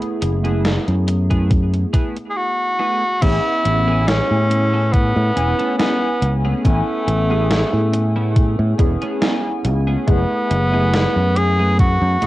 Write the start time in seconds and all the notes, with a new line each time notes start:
Already playing: A3 B3 E4 G#4
0.02 closed hi-hat
0.22 F#1, muted clean electric guitar stroke, closed hi-hat
0.43 A3 B3 E4 G#4, closed hi-hat
0.65 snare, closed hi-hat
0.88 F#2, closed hi-hat
1.08 muted clean electric guitar stroke, closed hi-hat
1.30 A3 B3 E4 G#4, kick, closed hi-hat
1.51 kick, closed hi-hat
1.73 closed hi-hat
1.93 A3 B3 E4 G#4, kick, closed hi-hat
2.16 closed hi-hat
2.30 G#4
2.37 F#4
2.79 A3 B3 E4 G#4
3.21 A1 B3 C#4 E4 G#4, kick, closed hi-hat, crash
3.64 A1, muted clean electric guitar stroke, closed hi-hat
3.86 A3 B3 C#4 E4 G#4 G#5
4.08 C#4, snare, closed hi-hat
4.31 A2
4.50 muted clean electric guitar stroke, closed hi-hat
4.73 A3 B3 C#4 A4
4.92 B3, kick, closed hi-hat
5.16 A2
5.36 E1 B3 C#4 E4 G#5, muted clean electric guitar stroke, closed hi-hat
5.59 A3 B3 C#4 A4, closed hi-hat
5.78 B3 C#4 E4 G#5, snare, closed hi-hat
6.22 C#2, muted clean electric guitar stroke, closed hi-hat
6.45 A3 B3 C#4 G#4
6.64 A1 A3 B3 C#4 E4 G#5, kick, closed hi-hat
7.08 A1, muted clean electric guitar stroke, closed hi-hat
7.29 A3 B3 C#4 E4 G#4
7.51 snare, closed hi-hat
7.73 A2
7.93 muted clean electric guitar stroke, closed hi-hat
8.16 A3 B3 C#4 E4
8.36 kick, closed hi-hat
8.59 A2
8.78 E1 B3 C#4 E4 G#4, muted clean electric guitar stroke, kick, closed hi-hat
9.02 A3 B3 C#4 G#4, closed hi-hat
9.21 B3 C#4 E4 G#5, snare, closed hi-hat
9.65 C#2, muted clean electric guitar stroke, closed hi-hat
9.87 A3 B3 C#4 G#4
10.07 F#1 A3 B3 E4 G#4, kick, closed hi-hat
10.50 F#1, muted clean electric guitar stroke, closed hi-hat
10.72 A3 B3 E4 G#4
10.93 snare, closed hi-hat
11.16 F#2
11.36 G#4, muted clean electric guitar stroke, closed hi-hat
11.59 A3 B3 E4 G#4
11.79 F#4, kick, closed hi-hat
12.02 F#2
12.21 E1 A3 B3 E4 G#4, muted clean electric guitar stroke, closed hi-hat